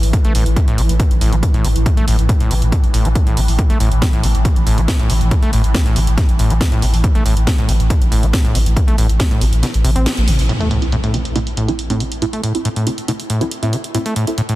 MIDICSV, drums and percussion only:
0, 0, Header, 1, 2, 480
1, 0, Start_track
1, 0, Key_signature, 0, "minor"
1, 0, Tempo, 431655
1, 148, Time_signature, 4, 2, 24, 8
1, 16184, End_track
2, 0, Start_track
2, 0, Title_t, "Drums"
2, 34, Note_on_c, 9, 46, 65
2, 145, Note_off_c, 9, 46, 0
2, 148, Note_on_c, 9, 36, 122
2, 149, Note_on_c, 9, 42, 97
2, 259, Note_off_c, 9, 36, 0
2, 260, Note_off_c, 9, 42, 0
2, 274, Note_on_c, 9, 42, 57
2, 385, Note_off_c, 9, 42, 0
2, 388, Note_on_c, 9, 46, 112
2, 500, Note_off_c, 9, 46, 0
2, 513, Note_on_c, 9, 42, 55
2, 624, Note_off_c, 9, 42, 0
2, 628, Note_on_c, 9, 36, 127
2, 628, Note_on_c, 9, 42, 92
2, 739, Note_off_c, 9, 36, 0
2, 740, Note_off_c, 9, 42, 0
2, 754, Note_on_c, 9, 42, 55
2, 865, Note_off_c, 9, 42, 0
2, 868, Note_on_c, 9, 46, 111
2, 980, Note_off_c, 9, 46, 0
2, 993, Note_on_c, 9, 42, 58
2, 1105, Note_off_c, 9, 42, 0
2, 1108, Note_on_c, 9, 36, 122
2, 1109, Note_on_c, 9, 42, 97
2, 1219, Note_off_c, 9, 36, 0
2, 1220, Note_off_c, 9, 42, 0
2, 1234, Note_on_c, 9, 42, 57
2, 1345, Note_off_c, 9, 42, 0
2, 1349, Note_on_c, 9, 46, 105
2, 1460, Note_off_c, 9, 46, 0
2, 1474, Note_on_c, 9, 42, 57
2, 1585, Note_off_c, 9, 42, 0
2, 1587, Note_on_c, 9, 36, 117
2, 1590, Note_on_c, 9, 42, 95
2, 1699, Note_off_c, 9, 36, 0
2, 1701, Note_off_c, 9, 42, 0
2, 1714, Note_on_c, 9, 42, 52
2, 1826, Note_off_c, 9, 42, 0
2, 1830, Note_on_c, 9, 46, 112
2, 1941, Note_off_c, 9, 46, 0
2, 1954, Note_on_c, 9, 42, 54
2, 2065, Note_off_c, 9, 42, 0
2, 2068, Note_on_c, 9, 36, 122
2, 2069, Note_on_c, 9, 42, 93
2, 2179, Note_off_c, 9, 36, 0
2, 2180, Note_off_c, 9, 42, 0
2, 2194, Note_on_c, 9, 42, 53
2, 2306, Note_off_c, 9, 42, 0
2, 2309, Note_on_c, 9, 46, 111
2, 2420, Note_off_c, 9, 46, 0
2, 2433, Note_on_c, 9, 42, 53
2, 2545, Note_off_c, 9, 42, 0
2, 2548, Note_on_c, 9, 36, 125
2, 2549, Note_on_c, 9, 42, 91
2, 2659, Note_off_c, 9, 36, 0
2, 2661, Note_off_c, 9, 42, 0
2, 2674, Note_on_c, 9, 42, 54
2, 2785, Note_off_c, 9, 42, 0
2, 2789, Note_on_c, 9, 46, 107
2, 2901, Note_off_c, 9, 46, 0
2, 2914, Note_on_c, 9, 42, 57
2, 3025, Note_off_c, 9, 42, 0
2, 3028, Note_on_c, 9, 36, 122
2, 3030, Note_on_c, 9, 42, 89
2, 3139, Note_off_c, 9, 36, 0
2, 3141, Note_off_c, 9, 42, 0
2, 3154, Note_on_c, 9, 42, 53
2, 3265, Note_off_c, 9, 42, 0
2, 3269, Note_on_c, 9, 46, 110
2, 3380, Note_off_c, 9, 46, 0
2, 3393, Note_on_c, 9, 42, 55
2, 3505, Note_off_c, 9, 42, 0
2, 3508, Note_on_c, 9, 36, 122
2, 3508, Note_on_c, 9, 42, 94
2, 3619, Note_off_c, 9, 36, 0
2, 3620, Note_off_c, 9, 42, 0
2, 3634, Note_on_c, 9, 42, 52
2, 3745, Note_off_c, 9, 42, 0
2, 3748, Note_on_c, 9, 46, 114
2, 3859, Note_off_c, 9, 46, 0
2, 3874, Note_on_c, 9, 46, 65
2, 3985, Note_off_c, 9, 46, 0
2, 3988, Note_on_c, 9, 36, 122
2, 3989, Note_on_c, 9, 42, 89
2, 4099, Note_off_c, 9, 36, 0
2, 4100, Note_off_c, 9, 42, 0
2, 4114, Note_on_c, 9, 42, 51
2, 4225, Note_off_c, 9, 42, 0
2, 4229, Note_on_c, 9, 46, 107
2, 4340, Note_off_c, 9, 46, 0
2, 4354, Note_on_c, 9, 42, 48
2, 4465, Note_off_c, 9, 42, 0
2, 4468, Note_on_c, 9, 36, 123
2, 4470, Note_on_c, 9, 38, 109
2, 4470, Note_on_c, 9, 42, 87
2, 4579, Note_off_c, 9, 36, 0
2, 4581, Note_off_c, 9, 38, 0
2, 4581, Note_off_c, 9, 42, 0
2, 4594, Note_on_c, 9, 42, 50
2, 4705, Note_off_c, 9, 42, 0
2, 4709, Note_on_c, 9, 46, 109
2, 4821, Note_off_c, 9, 46, 0
2, 4835, Note_on_c, 9, 42, 52
2, 4946, Note_off_c, 9, 42, 0
2, 4948, Note_on_c, 9, 36, 110
2, 4949, Note_on_c, 9, 42, 93
2, 5059, Note_off_c, 9, 36, 0
2, 5060, Note_off_c, 9, 42, 0
2, 5074, Note_on_c, 9, 42, 51
2, 5185, Note_off_c, 9, 42, 0
2, 5189, Note_on_c, 9, 46, 104
2, 5301, Note_off_c, 9, 46, 0
2, 5314, Note_on_c, 9, 42, 54
2, 5425, Note_off_c, 9, 42, 0
2, 5428, Note_on_c, 9, 36, 113
2, 5429, Note_on_c, 9, 38, 119
2, 5429, Note_on_c, 9, 42, 86
2, 5539, Note_off_c, 9, 36, 0
2, 5540, Note_off_c, 9, 38, 0
2, 5540, Note_off_c, 9, 42, 0
2, 5553, Note_on_c, 9, 42, 49
2, 5664, Note_off_c, 9, 42, 0
2, 5668, Note_on_c, 9, 46, 108
2, 5779, Note_off_c, 9, 46, 0
2, 5793, Note_on_c, 9, 42, 51
2, 5904, Note_off_c, 9, 42, 0
2, 5908, Note_on_c, 9, 36, 119
2, 5909, Note_on_c, 9, 42, 88
2, 6019, Note_off_c, 9, 36, 0
2, 6020, Note_off_c, 9, 42, 0
2, 6033, Note_on_c, 9, 42, 50
2, 6144, Note_off_c, 9, 42, 0
2, 6149, Note_on_c, 9, 46, 108
2, 6260, Note_off_c, 9, 46, 0
2, 6273, Note_on_c, 9, 42, 52
2, 6384, Note_off_c, 9, 42, 0
2, 6388, Note_on_c, 9, 36, 118
2, 6389, Note_on_c, 9, 38, 116
2, 6389, Note_on_c, 9, 42, 85
2, 6499, Note_off_c, 9, 36, 0
2, 6500, Note_off_c, 9, 38, 0
2, 6500, Note_off_c, 9, 42, 0
2, 6513, Note_on_c, 9, 42, 54
2, 6625, Note_off_c, 9, 42, 0
2, 6628, Note_on_c, 9, 46, 103
2, 6739, Note_off_c, 9, 46, 0
2, 6753, Note_on_c, 9, 42, 54
2, 6864, Note_off_c, 9, 42, 0
2, 6867, Note_on_c, 9, 36, 116
2, 6869, Note_on_c, 9, 38, 38
2, 6869, Note_on_c, 9, 42, 90
2, 6978, Note_off_c, 9, 36, 0
2, 6980, Note_off_c, 9, 38, 0
2, 6980, Note_off_c, 9, 42, 0
2, 6993, Note_on_c, 9, 42, 51
2, 7104, Note_off_c, 9, 42, 0
2, 7109, Note_on_c, 9, 46, 99
2, 7220, Note_off_c, 9, 46, 0
2, 7233, Note_on_c, 9, 42, 51
2, 7344, Note_off_c, 9, 42, 0
2, 7347, Note_on_c, 9, 36, 108
2, 7348, Note_on_c, 9, 38, 122
2, 7348, Note_on_c, 9, 42, 91
2, 7458, Note_off_c, 9, 36, 0
2, 7459, Note_off_c, 9, 38, 0
2, 7459, Note_off_c, 9, 42, 0
2, 7473, Note_on_c, 9, 42, 47
2, 7584, Note_off_c, 9, 42, 0
2, 7587, Note_on_c, 9, 46, 105
2, 7698, Note_off_c, 9, 46, 0
2, 7713, Note_on_c, 9, 46, 61
2, 7824, Note_off_c, 9, 46, 0
2, 7827, Note_on_c, 9, 36, 110
2, 7828, Note_on_c, 9, 42, 90
2, 7938, Note_off_c, 9, 36, 0
2, 7940, Note_off_c, 9, 42, 0
2, 7953, Note_on_c, 9, 42, 51
2, 8064, Note_off_c, 9, 42, 0
2, 8069, Note_on_c, 9, 46, 102
2, 8180, Note_off_c, 9, 46, 0
2, 8194, Note_on_c, 9, 42, 51
2, 8305, Note_off_c, 9, 42, 0
2, 8307, Note_on_c, 9, 36, 116
2, 8308, Note_on_c, 9, 38, 116
2, 8308, Note_on_c, 9, 42, 90
2, 8418, Note_off_c, 9, 36, 0
2, 8419, Note_off_c, 9, 38, 0
2, 8419, Note_off_c, 9, 42, 0
2, 8433, Note_on_c, 9, 42, 53
2, 8545, Note_off_c, 9, 42, 0
2, 8548, Note_on_c, 9, 46, 102
2, 8659, Note_off_c, 9, 46, 0
2, 8674, Note_on_c, 9, 42, 52
2, 8785, Note_off_c, 9, 42, 0
2, 8787, Note_on_c, 9, 36, 114
2, 8789, Note_on_c, 9, 42, 98
2, 8898, Note_off_c, 9, 36, 0
2, 8900, Note_off_c, 9, 42, 0
2, 8914, Note_on_c, 9, 42, 55
2, 9025, Note_off_c, 9, 42, 0
2, 9028, Note_on_c, 9, 46, 99
2, 9140, Note_off_c, 9, 46, 0
2, 9153, Note_on_c, 9, 42, 55
2, 9265, Note_off_c, 9, 42, 0
2, 9267, Note_on_c, 9, 36, 114
2, 9268, Note_on_c, 9, 38, 125
2, 9268, Note_on_c, 9, 42, 92
2, 9378, Note_off_c, 9, 36, 0
2, 9379, Note_off_c, 9, 38, 0
2, 9379, Note_off_c, 9, 42, 0
2, 9394, Note_on_c, 9, 42, 49
2, 9505, Note_off_c, 9, 42, 0
2, 9509, Note_on_c, 9, 46, 101
2, 9620, Note_off_c, 9, 46, 0
2, 9633, Note_on_c, 9, 42, 52
2, 9744, Note_off_c, 9, 42, 0
2, 9747, Note_on_c, 9, 36, 112
2, 9748, Note_on_c, 9, 42, 98
2, 9858, Note_off_c, 9, 36, 0
2, 9860, Note_off_c, 9, 42, 0
2, 9874, Note_on_c, 9, 42, 55
2, 9985, Note_off_c, 9, 42, 0
2, 9988, Note_on_c, 9, 46, 111
2, 10099, Note_off_c, 9, 46, 0
2, 10113, Note_on_c, 9, 42, 55
2, 10225, Note_off_c, 9, 42, 0
2, 10227, Note_on_c, 9, 36, 122
2, 10229, Note_on_c, 9, 38, 120
2, 10229, Note_on_c, 9, 42, 92
2, 10338, Note_off_c, 9, 36, 0
2, 10340, Note_off_c, 9, 38, 0
2, 10340, Note_off_c, 9, 42, 0
2, 10354, Note_on_c, 9, 42, 56
2, 10465, Note_off_c, 9, 42, 0
2, 10469, Note_on_c, 9, 46, 103
2, 10580, Note_off_c, 9, 46, 0
2, 10594, Note_on_c, 9, 42, 54
2, 10705, Note_off_c, 9, 42, 0
2, 10709, Note_on_c, 9, 38, 41
2, 10709, Note_on_c, 9, 42, 100
2, 10820, Note_off_c, 9, 38, 0
2, 10820, Note_off_c, 9, 42, 0
2, 10834, Note_on_c, 9, 42, 54
2, 10945, Note_off_c, 9, 42, 0
2, 10948, Note_on_c, 9, 46, 99
2, 11060, Note_off_c, 9, 46, 0
2, 11074, Note_on_c, 9, 42, 58
2, 11185, Note_off_c, 9, 42, 0
2, 11188, Note_on_c, 9, 38, 127
2, 11188, Note_on_c, 9, 42, 96
2, 11300, Note_off_c, 9, 38, 0
2, 11300, Note_off_c, 9, 42, 0
2, 11313, Note_on_c, 9, 42, 49
2, 11424, Note_off_c, 9, 42, 0
2, 11428, Note_on_c, 9, 46, 101
2, 11539, Note_off_c, 9, 46, 0
2, 11554, Note_on_c, 9, 46, 61
2, 11665, Note_off_c, 9, 46, 0
2, 11669, Note_on_c, 9, 42, 80
2, 11780, Note_off_c, 9, 42, 0
2, 11794, Note_on_c, 9, 42, 56
2, 11905, Note_off_c, 9, 42, 0
2, 11909, Note_on_c, 9, 42, 78
2, 12020, Note_off_c, 9, 42, 0
2, 12033, Note_on_c, 9, 42, 53
2, 12144, Note_off_c, 9, 42, 0
2, 12148, Note_on_c, 9, 42, 78
2, 12259, Note_off_c, 9, 42, 0
2, 12273, Note_on_c, 9, 42, 53
2, 12384, Note_off_c, 9, 42, 0
2, 12388, Note_on_c, 9, 42, 83
2, 12499, Note_off_c, 9, 42, 0
2, 12513, Note_on_c, 9, 42, 55
2, 12624, Note_off_c, 9, 42, 0
2, 12628, Note_on_c, 9, 42, 82
2, 12739, Note_off_c, 9, 42, 0
2, 12753, Note_on_c, 9, 42, 53
2, 12864, Note_off_c, 9, 42, 0
2, 12868, Note_on_c, 9, 42, 79
2, 12980, Note_off_c, 9, 42, 0
2, 12994, Note_on_c, 9, 42, 57
2, 13105, Note_off_c, 9, 42, 0
2, 13109, Note_on_c, 9, 42, 78
2, 13220, Note_off_c, 9, 42, 0
2, 13234, Note_on_c, 9, 42, 53
2, 13345, Note_off_c, 9, 42, 0
2, 13349, Note_on_c, 9, 42, 76
2, 13460, Note_off_c, 9, 42, 0
2, 13473, Note_on_c, 9, 42, 55
2, 13585, Note_off_c, 9, 42, 0
2, 13589, Note_on_c, 9, 42, 78
2, 13700, Note_off_c, 9, 42, 0
2, 13714, Note_on_c, 9, 42, 55
2, 13825, Note_off_c, 9, 42, 0
2, 13828, Note_on_c, 9, 42, 85
2, 13939, Note_off_c, 9, 42, 0
2, 13954, Note_on_c, 9, 42, 55
2, 14065, Note_off_c, 9, 42, 0
2, 14069, Note_on_c, 9, 42, 75
2, 14180, Note_off_c, 9, 42, 0
2, 14194, Note_on_c, 9, 42, 54
2, 14305, Note_off_c, 9, 42, 0
2, 14309, Note_on_c, 9, 42, 77
2, 14420, Note_off_c, 9, 42, 0
2, 14434, Note_on_c, 9, 42, 54
2, 14545, Note_off_c, 9, 42, 0
2, 14549, Note_on_c, 9, 42, 82
2, 14660, Note_off_c, 9, 42, 0
2, 14674, Note_on_c, 9, 42, 55
2, 14785, Note_off_c, 9, 42, 0
2, 14788, Note_on_c, 9, 42, 83
2, 14899, Note_off_c, 9, 42, 0
2, 14914, Note_on_c, 9, 42, 57
2, 15025, Note_off_c, 9, 42, 0
2, 15028, Note_on_c, 9, 42, 81
2, 15139, Note_off_c, 9, 42, 0
2, 15153, Note_on_c, 9, 42, 51
2, 15264, Note_off_c, 9, 42, 0
2, 15267, Note_on_c, 9, 42, 79
2, 15379, Note_off_c, 9, 42, 0
2, 15392, Note_on_c, 9, 42, 54
2, 15503, Note_off_c, 9, 42, 0
2, 15507, Note_on_c, 9, 42, 78
2, 15619, Note_off_c, 9, 42, 0
2, 15632, Note_on_c, 9, 42, 52
2, 15743, Note_off_c, 9, 42, 0
2, 15747, Note_on_c, 9, 42, 80
2, 15859, Note_off_c, 9, 42, 0
2, 15872, Note_on_c, 9, 42, 52
2, 15983, Note_off_c, 9, 42, 0
2, 15988, Note_on_c, 9, 42, 75
2, 16099, Note_off_c, 9, 42, 0
2, 16112, Note_on_c, 9, 42, 53
2, 16184, Note_off_c, 9, 42, 0
2, 16184, End_track
0, 0, End_of_file